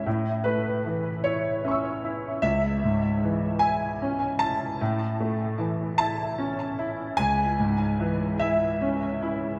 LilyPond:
<<
  \new Staff \with { instrumentName = "Grand piano" } { \time 6/8 \key a \major \tempo 4. = 50 << { r2 <e'' cis''' e'''>4 | r2. | r2. | r2. | } \\ { r8 b'4 cis''4. | e''4. gis''4 a''8~ | a''4. a''4. | gis''4. e''4 r8 | } >> }
  \new Staff \with { instrumentName = "Grand piano" } { \time 6/8 \key a \major a,8 a8 e8 e'8 cis'8 e'8 | cis,8 gis,8 e8 e'8 cis'8 e'8 | a,8 a8 e8 e'8 cis'8 e'8 | cis,8 gis,8 e8 e'8 cis'8 e'8 | }
>>